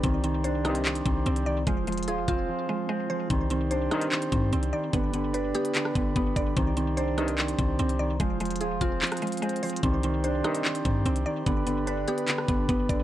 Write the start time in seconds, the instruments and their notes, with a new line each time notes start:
Already playing: accordion G4 D5
0.04 808-style bass C2, clean electric guitar D#3, synth pluck C4, accordion C5 C6, kick, closed hi-hat
0.24 clean electric guitar D#3, synth pluck C4, closed hi-hat
0.44 clean electric guitar D4, synth pluck C5, closed hi-hat
0.65 brass ensemble G2 C3 D#3, clean electric guitar C4, synth pluck D#4, cross-stick, closed hi-hat
0.75 closed hi-hat
0.85 clean electric guitar D#3, clap, closed hi-hat
0.95 closed hi-hat
1.06 808-style bass C2, clean electric guitar D#3, synth pluck C4, kick, closed hi-hat
1.26 808-style bass C2, clean electric guitar C4, synth pluck C4, closed hi-hat
1.36 closed hi-hat
1.46 clean electric guitar D#3, synth pluck D5
1.67 808-style bass F1, clean electric guitar F3, synth pluck G#3, accordion G#4 C5 F5, kick, closed hi-hat
1.87 clean electric guitar F3, synth pluck G#3, closed hi-hat
1.92 closed hi-hat
1.98 closed hi-hat
2.03 closed hi-hat
2.08 808-style bass D#1, clean electric guitar F4, synth pluck G#4, closed hi-hat
2.18 808-style bass F1
2.28 808-style bass F1, clean electric guitar C4, synth pluck F4, kick, closed hi-hat
2.49 clean electric guitar F3
2.69 clean electric guitar F3, synth pluck G#3
2.89 synth pluck G#3, clean electric guitar C4
3.10 clean electric guitar F3, synth pluck C5
3.30 808-style bass C2, clean electric guitar D#3, synth pluck C4, accordion G4 C5 D5 C6, kick, closed hi-hat
3.50 clean electric guitar D#3, synth pluck C4, closed hi-hat
3.71 clean electric guitar D4, synth pluck C5, closed hi-hat
3.91 brass ensemble G2 C3 D#3, clean electric guitar C4, synth pluck D#4, cross-stick, closed hi-hat
4.02 closed hi-hat
4.12 clean electric guitar D#3, clap, closed hi-hat
4.22 closed hi-hat
4.32 808-style bass G2, clean electric guitar D#3, synth pluck C4, kick, closed hi-hat
4.53 808-style bass C2, clean electric guitar C4, synth pluck C4, closed hi-hat
4.63 closed hi-hat
4.73 clean electric guitar D#3, synth pluck D5
4.93 808-style bass G1, clean electric guitar D3, synth pluck B3, accordion B4 B5, kick, closed hi-hat
5.14 clean electric guitar D3, synth pluck B3, closed hi-hat
5.33 clean electric guitar D4, synth pluck B4, closed hi-hat
5.55 clean electric guitar B3, synth pluck G4, closed hi-hat
5.65 closed hi-hat
5.75 clean electric guitar D3, clap, closed hi-hat
5.85 cross-stick
5.95 808-style bass G1, clean electric guitar D3, synth pluck B3, kick, closed hi-hat
6.16 808-style bass G1, synth pluck B3, clean electric guitar B3, kick, closed hi-hat
6.36 808-style bass G1, clean electric guitar D3, synth pluck D5, kick, closed hi-hat
6.57 808-style bass C2, clean electric guitar D#3, synth pluck C4, accordion C5 C6, kick, closed hi-hat
6.77 clean electric guitar D#3, synth pluck C4, closed hi-hat
6.97 clean electric guitar D4, synth pluck C5, closed hi-hat
7.18 brass ensemble G2 C3 D#3, clean electric guitar C4, synth pluck D#4, cross-stick, closed hi-hat
7.28 closed hi-hat
7.38 clean electric guitar D#3, clap, closed hi-hat
7.48 closed hi-hat
7.59 808-style bass C2, clean electric guitar D#3, synth pluck C4, kick, closed hi-hat
7.79 808-style bass C2, clean electric guitar C4, synth pluck C4, closed hi-hat
7.89 closed hi-hat
7.99 clean electric guitar D#3, synth pluck D5
8.20 808-style bass F1, clean electric guitar F3, synth pluck G#3, accordion G#4 C5 F5, kick, closed hi-hat
8.40 clean electric guitar F3, synth pluck G#3, closed hi-hat
8.45 closed hi-hat
8.51 closed hi-hat
8.56 closed hi-hat
8.61 808-style bass D#1, clean electric guitar F4, synth pluck G#4, closed hi-hat
8.71 808-style bass F1
8.81 808-style bass F1, clean electric guitar C4, synth pluck F4, kick, closed hi-hat
9.02 clean electric guitar F3, clap, closed hi-hat
9.07 closed hi-hat
9.12 cross-stick, closed hi-hat
9.17 closed hi-hat
9.22 clean electric guitar F3, synth pluck G#3, closed hi-hat
9.27 closed hi-hat
9.32 closed hi-hat
9.37 closed hi-hat
9.42 synth pluck G#3, clean electric guitar C4, closed hi-hat
9.49 closed hi-hat
9.56 closed hi-hat
9.63 clean electric guitar F3, synth pluck C5, closed hi-hat, open hi-hat
9.70 closed hi-hat
9.76 closed hi-hat
9.83 808-style bass C2, clean electric guitar D#3, synth pluck C4, accordion G4 C5 D5 C6, kick, closed hi-hat
10.03 clean electric guitar D#3, synth pluck C4, closed hi-hat
10.24 clean electric guitar D4, synth pluck C5, closed hi-hat
10.44 brass ensemble G2 C3 D#3, clean electric guitar C4, synth pluck D#4, cross-stick, closed hi-hat
10.55 closed hi-hat
10.65 clean electric guitar D#3, clap, closed hi-hat
10.75 closed hi-hat
10.85 808-style bass G2, clean electric guitar D#3, synth pluck C4, kick, closed hi-hat
11.06 808-style bass C2, clean electric guitar C4, synth pluck C4, closed hi-hat
11.16 closed hi-hat
11.26 clean electric guitar D#3, synth pluck D5
11.46 808-style bass G1, clean electric guitar D3, synth pluck B3, accordion B4 D5 B5, kick, closed hi-hat
11.67 clean electric guitar D3, synth pluck B3, closed hi-hat
11.86 clean electric guitar D4, synth pluck B4, closed hi-hat
12.08 clean electric guitar B3, synth pluck G4, closed hi-hat
12.18 closed hi-hat
12.28 clean electric guitar D3, clap, closed hi-hat
12.38 cross-stick
12.48 808-style bass G1, clean electric guitar D3, synth pluck B3, kick, closed hi-hat
12.69 808-style bass G1, synth pluck B3, clean electric guitar B3, kick, closed hi-hat
12.89 808-style bass G1, clean electric guitar D3, synth pluck D5, kick, closed hi-hat